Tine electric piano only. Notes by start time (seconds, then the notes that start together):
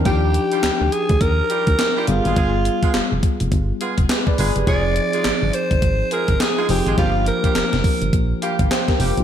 0.06 F3 D4 D#4 G4
2.08 G3 B3 F4 G#4
4.10 G#4 B4
4.28 B4 D5
4.39 G#4 B4
4.56 G4
4.67 F3 C4 D#4 G#4
6.69 F3 C4 D#4 G#4
6.98 F3 A#3 D4 G4
8.43 F5
8.72 C5 G5
8.89 G4 A#4
9.01 G4 G5
9.18 D4 F4